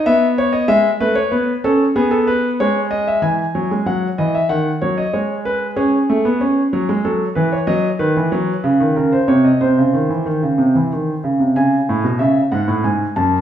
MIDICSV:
0, 0, Header, 1, 2, 480
1, 0, Start_track
1, 0, Tempo, 635593
1, 41, Time_signature, 3, 2, 24, 8
1, 6281, Tempo, 643777
1, 10079, End_track
2, 0, Start_track
2, 0, Title_t, "Grand piano"
2, 0, Program_c, 0, 0
2, 45, Note_on_c, 0, 76, 87
2, 47, Note_on_c, 0, 59, 71
2, 193, Note_off_c, 0, 76, 0
2, 289, Note_on_c, 0, 73, 82
2, 397, Note_on_c, 0, 75, 75
2, 401, Note_off_c, 0, 73, 0
2, 509, Note_off_c, 0, 59, 0
2, 514, Note_on_c, 0, 56, 76
2, 514, Note_on_c, 0, 76, 88
2, 515, Note_off_c, 0, 75, 0
2, 665, Note_off_c, 0, 56, 0
2, 665, Note_off_c, 0, 76, 0
2, 759, Note_on_c, 0, 71, 83
2, 760, Note_on_c, 0, 57, 68
2, 872, Note_on_c, 0, 73, 75
2, 876, Note_off_c, 0, 71, 0
2, 908, Note_off_c, 0, 57, 0
2, 992, Note_off_c, 0, 73, 0
2, 994, Note_on_c, 0, 59, 60
2, 994, Note_on_c, 0, 71, 70
2, 1144, Note_off_c, 0, 59, 0
2, 1144, Note_off_c, 0, 71, 0
2, 1240, Note_on_c, 0, 61, 72
2, 1240, Note_on_c, 0, 69, 79
2, 1389, Note_off_c, 0, 61, 0
2, 1389, Note_off_c, 0, 69, 0
2, 1478, Note_on_c, 0, 59, 72
2, 1479, Note_on_c, 0, 68, 77
2, 1594, Note_on_c, 0, 69, 76
2, 1596, Note_off_c, 0, 68, 0
2, 1714, Note_off_c, 0, 69, 0
2, 1717, Note_on_c, 0, 71, 81
2, 1868, Note_off_c, 0, 71, 0
2, 1946, Note_off_c, 0, 59, 0
2, 1965, Note_on_c, 0, 73, 82
2, 1968, Note_on_c, 0, 56, 67
2, 2113, Note_off_c, 0, 73, 0
2, 2195, Note_on_c, 0, 75, 76
2, 2316, Note_off_c, 0, 75, 0
2, 2322, Note_on_c, 0, 76, 69
2, 2431, Note_on_c, 0, 52, 55
2, 2432, Note_off_c, 0, 56, 0
2, 2433, Note_on_c, 0, 80, 67
2, 2440, Note_off_c, 0, 76, 0
2, 2585, Note_off_c, 0, 52, 0
2, 2680, Note_on_c, 0, 54, 66
2, 2800, Note_off_c, 0, 54, 0
2, 2804, Note_on_c, 0, 56, 57
2, 2908, Note_off_c, 0, 80, 0
2, 2917, Note_on_c, 0, 54, 65
2, 2919, Note_on_c, 0, 78, 66
2, 2923, Note_off_c, 0, 56, 0
2, 3071, Note_off_c, 0, 54, 0
2, 3072, Note_off_c, 0, 78, 0
2, 3159, Note_on_c, 0, 75, 63
2, 3161, Note_on_c, 0, 52, 59
2, 3282, Note_off_c, 0, 75, 0
2, 3282, Note_on_c, 0, 76, 59
2, 3314, Note_off_c, 0, 52, 0
2, 3393, Note_on_c, 0, 78, 74
2, 3396, Note_on_c, 0, 51, 63
2, 3403, Note_off_c, 0, 76, 0
2, 3548, Note_off_c, 0, 78, 0
2, 3550, Note_off_c, 0, 51, 0
2, 3637, Note_on_c, 0, 73, 66
2, 3641, Note_on_c, 0, 54, 65
2, 3758, Note_on_c, 0, 75, 62
2, 3760, Note_off_c, 0, 73, 0
2, 3793, Note_off_c, 0, 54, 0
2, 3877, Note_on_c, 0, 56, 52
2, 3877, Note_on_c, 0, 73, 58
2, 3881, Note_off_c, 0, 75, 0
2, 4030, Note_off_c, 0, 73, 0
2, 4118, Note_on_c, 0, 71, 70
2, 4270, Note_off_c, 0, 71, 0
2, 4348, Note_off_c, 0, 56, 0
2, 4353, Note_on_c, 0, 68, 61
2, 4354, Note_on_c, 0, 61, 76
2, 4507, Note_off_c, 0, 61, 0
2, 4603, Note_on_c, 0, 57, 72
2, 4720, Note_on_c, 0, 59, 66
2, 4722, Note_off_c, 0, 57, 0
2, 4839, Note_on_c, 0, 61, 76
2, 4840, Note_off_c, 0, 59, 0
2, 4990, Note_off_c, 0, 61, 0
2, 5082, Note_on_c, 0, 54, 74
2, 5200, Note_off_c, 0, 54, 0
2, 5204, Note_on_c, 0, 56, 70
2, 5287, Note_off_c, 0, 68, 0
2, 5320, Note_off_c, 0, 56, 0
2, 5321, Note_on_c, 0, 69, 55
2, 5322, Note_on_c, 0, 54, 64
2, 5470, Note_off_c, 0, 69, 0
2, 5471, Note_off_c, 0, 54, 0
2, 5554, Note_on_c, 0, 71, 60
2, 5560, Note_on_c, 0, 52, 72
2, 5674, Note_off_c, 0, 71, 0
2, 5682, Note_on_c, 0, 73, 59
2, 5709, Note_off_c, 0, 52, 0
2, 5793, Note_on_c, 0, 75, 71
2, 5794, Note_on_c, 0, 54, 82
2, 5798, Note_off_c, 0, 73, 0
2, 5944, Note_off_c, 0, 75, 0
2, 5945, Note_off_c, 0, 54, 0
2, 6036, Note_on_c, 0, 51, 71
2, 6036, Note_on_c, 0, 71, 69
2, 6156, Note_off_c, 0, 51, 0
2, 6167, Note_on_c, 0, 52, 65
2, 6282, Note_off_c, 0, 52, 0
2, 6283, Note_on_c, 0, 54, 76
2, 6431, Note_off_c, 0, 54, 0
2, 6520, Note_on_c, 0, 49, 74
2, 6637, Note_off_c, 0, 49, 0
2, 6643, Note_on_c, 0, 51, 69
2, 6737, Note_off_c, 0, 71, 0
2, 6759, Note_off_c, 0, 51, 0
2, 6763, Note_on_c, 0, 70, 50
2, 6764, Note_on_c, 0, 49, 60
2, 6879, Note_off_c, 0, 70, 0
2, 6883, Note_on_c, 0, 72, 60
2, 6913, Note_off_c, 0, 49, 0
2, 6997, Note_on_c, 0, 48, 66
2, 6999, Note_off_c, 0, 72, 0
2, 7000, Note_on_c, 0, 73, 63
2, 7118, Note_off_c, 0, 73, 0
2, 7122, Note_on_c, 0, 75, 50
2, 7149, Note_off_c, 0, 48, 0
2, 7241, Note_off_c, 0, 75, 0
2, 7244, Note_on_c, 0, 72, 59
2, 7245, Note_on_c, 0, 48, 60
2, 7363, Note_off_c, 0, 48, 0
2, 7372, Note_on_c, 0, 49, 56
2, 7487, Note_off_c, 0, 49, 0
2, 7488, Note_on_c, 0, 51, 57
2, 7606, Note_off_c, 0, 51, 0
2, 7607, Note_on_c, 0, 52, 54
2, 7726, Note_off_c, 0, 52, 0
2, 7727, Note_on_c, 0, 51, 57
2, 7846, Note_off_c, 0, 51, 0
2, 7855, Note_on_c, 0, 49, 51
2, 7968, Note_on_c, 0, 48, 56
2, 7971, Note_off_c, 0, 49, 0
2, 8088, Note_off_c, 0, 48, 0
2, 8097, Note_on_c, 0, 52, 51
2, 8213, Note_off_c, 0, 52, 0
2, 8227, Note_on_c, 0, 51, 49
2, 8374, Note_off_c, 0, 51, 0
2, 8428, Note_off_c, 0, 72, 0
2, 8460, Note_on_c, 0, 49, 57
2, 8576, Note_off_c, 0, 49, 0
2, 8576, Note_on_c, 0, 48, 45
2, 8694, Note_off_c, 0, 48, 0
2, 8700, Note_on_c, 0, 80, 59
2, 8701, Note_on_c, 0, 49, 71
2, 8848, Note_off_c, 0, 49, 0
2, 8946, Note_on_c, 0, 45, 67
2, 9057, Note_off_c, 0, 45, 0
2, 9057, Note_on_c, 0, 47, 60
2, 9161, Note_off_c, 0, 80, 0
2, 9169, Note_on_c, 0, 76, 58
2, 9171, Note_off_c, 0, 47, 0
2, 9171, Note_on_c, 0, 49, 67
2, 9317, Note_off_c, 0, 76, 0
2, 9319, Note_off_c, 0, 49, 0
2, 9412, Note_on_c, 0, 78, 60
2, 9415, Note_on_c, 0, 44, 63
2, 9528, Note_off_c, 0, 44, 0
2, 9533, Note_on_c, 0, 45, 64
2, 9559, Note_off_c, 0, 78, 0
2, 9646, Note_off_c, 0, 45, 0
2, 9655, Note_on_c, 0, 44, 58
2, 9655, Note_on_c, 0, 80, 51
2, 9799, Note_off_c, 0, 44, 0
2, 9799, Note_off_c, 0, 80, 0
2, 9893, Note_on_c, 0, 81, 57
2, 9895, Note_on_c, 0, 42, 69
2, 10037, Note_off_c, 0, 81, 0
2, 10038, Note_off_c, 0, 42, 0
2, 10079, End_track
0, 0, End_of_file